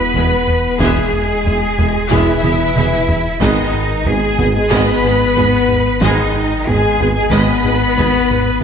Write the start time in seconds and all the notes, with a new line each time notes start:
Already playing: E1 B3 B4 B5
0.14 E1 E2 G#3 B3 G#4 E5, taiko low
0.47 E2, taiko low
0.79 E1 E2 E3 G#3 B3 G#4 E5 G#5, taiko
1.13 E2
1.45 E1 E2 G#3 B3 G#4 E5, taiko low
1.78 E1 E2 G#3 B3 G#4 E5, taiko low
2.10 E1 E2 E3 G#3 B3 E4 G#4 E5, taiko
2.43 E1 E2 B3 E4 G#4 E5, taiko mid
2.76 E1 E2 G#3 B3 G#4 E5, taiko mid
3.08 E2, taiko low
3.41 G#1 G#2 D#3 G#3 B3 D#4 G#4 D#5, taiko
3.74 G#2
4.06 G#1 G#2 G#3 B3 G#4 D#5 G#5, taiko low
4.39 G#1 G#2 B3 G#4 D#5, taiko low
4.54 G#3 G#4 G#5
4.70 G#1 G#2 D#3 G#3 B3 G#4 B4 D#5 B5, taiko
5.04 G#1 G#2 B3 G#4 D#5
5.36 G#1 G#2 B3 G#4 D#5, taiko low
5.68 G#2, taiko low
6.01 G#1 G#2 D#3 G#3 B3 D#4 G#4 D#5, taiko
6.34 G#2
6.67 G#1 G#2 G#3 B3 G#4 D#5 G#5, taiko low
6.99 G#1 G#2 B3 G#4 D#5, taiko low
7.15 G#3 G#4 G#5
7.32 G#1 G#2 D#3 G#3 B3 G#4 B4 D#5 B5, taiko
7.64 G#1 G#2 B3 G#4 D#5
7.97 G#1 G#2 B3 G#4 D#5, taiko low
8.30 G#2, taiko low